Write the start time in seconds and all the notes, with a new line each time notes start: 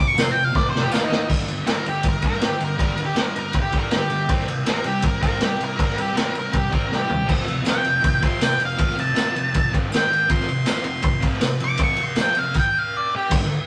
Already playing: F2 C3
0.07 C#6
0.15 F2 C3, snare, open hi-hat, tambourine
0.20 C6
0.31 F2 C3 G5
0.45 F5
0.52 F2 C3 D5, kick
0.56 snare
0.70 F2 C3 C5
0.76 snare
0.83 G4
0.88 A#2 F3 A#3 F4, tambourine
0.94 snare
1.03 D#4
1.08 D#3 A#3 D#4, snare
1.28 G2 D3 G3, kick, crash
1.41 snare
1.47 G2 D3, ride
1.65 G2 D3 G3 A#4, snare, ride
1.84 G2 D3, ride
1.89 G4
2.03 G2 D3, kick, ride
2.09 A#4
2.22 G2 D3 G3, kick, ride
2.26 A#4
2.32 snare
2.41 G2 D3, snare, ride
2.45 G4
2.59 G2 D3, ride
2.64 A#4
2.77 G2 D3 G3, kick, ride
2.83 A#4
2.97 G2 D3, ride
3.05 G4
3.15 G2 D3 G3, snare, ride
3.23 A#4
3.36 G2 D3 A#4, ride
3.53 G2 D3, kick, ride
3.62 G4
3.72 G2 D3 G3, kick, ride
3.79 A#4
3.91 G2 D3, snare, ride
3.97 G4
4.10 G2 D3, ride
4.29 C3 G3 C4, kick, ride
4.39 snare
4.48 C3 G3, ride
4.66 C3 G3 C4, snare, ride
4.70 A#4
4.84 C3 G3 G4, ride
5.02 C3 G3, kick, ride
5.07 A#4
5.21 C3 G3 C4 A#4, kick, ride
5.38 C3 G3, snare, ride
5.43 G4
5.58 C3 G3, ride
5.64 A#4
5.76 C3 G3 C4, kick, ride
5.83 A#4
5.90 snare
5.95 C3 G3, ride
6.01 G4
6.13 C3 G3 C4 A#4, ride
6.18 snare
6.33 C3 G3, ride
6.39 A#4
6.51 C3 G3, kick, ride
6.57 G4
6.70 C3 G3 C4, kick, ride
6.75 A#4
6.88 C3 G3
6.92 G4, snare
7.07 C3 G3, floor tom
7.25 F2 C3 F3, kick
7.29 crash
7.41 snare
7.46 F2 C3, ride
7.62 F2 C3 F3, ride, tambourine
7.67 G5, snare
7.82 F2 C3, ride
8.01 F2 C3, kick, ride
8.20 F2 C3 F3, kick, ride
8.27 C6
8.40 F2 C3 G5, snare, ride, tambourine
8.58 F2 C3, ride
8.65 F5
8.77 F2 C3 F3, kick, ride
8.90 snare
8.96 F2 C3 A5, ride
9.14 F2 C3 F3, snare, ride
9.18 tambourine
9.35 F2 C3, ride
9.54 F2 C3, kick, ride
9.70 F2 C3 F3
9.74 kick, ride
9.88 G#2 D#3 G#3, tambourine
9.94 G5, snare, ride
10.07 G#2 D#3
10.13 ride
10.29 F2 C3 F3 C6, kick, ride
10.40 snare
10.48 F2 C3, ride
10.66 F2 C3 F3 C6, snare, ride, tambourine
10.84 F2 C3 C6, ride
11.02 F2 C3, kick, ride
11.21 F2 C3 F3, kick, ride
11.32 snare
11.40 F2 C3, snare, ride, tambourine
11.60 F2 C3, ride
11.64 D6
11.77 F2 C3 F3, kick, ride
11.83 C#6
11.96 F2 C3, ride
12.03 C6
12.16 F2 C3 F3, snare, ride, tambourine
12.21 G5
12.35 F2, ride
12.39 C3 F5
12.54 kick, crash
12.59 G5
12.79 F5
12.97 D5
13.16 G4
13.30 G2 D3, kick, crash
13.41 G2 D3, snare